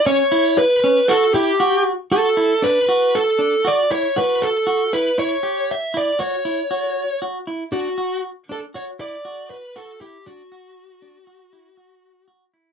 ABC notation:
X:1
M:5/4
L:1/8
Q:1/4=118
K:D
V:1 name="Lead electric guitar"
c2 B2 A G2 z A2 | B2 A2 d c B A2 B | c2 e d c4 z2 | F2 z A c d2 B A G |
F8 z2 |]
V:2 name="Clean electric guitar"
C E2 C F E F2 F E | D F2 D F E F2 F E | E G2 E F E F2 F E | D F2 D F E F2 F E |
D F2 D F E F2 F E |]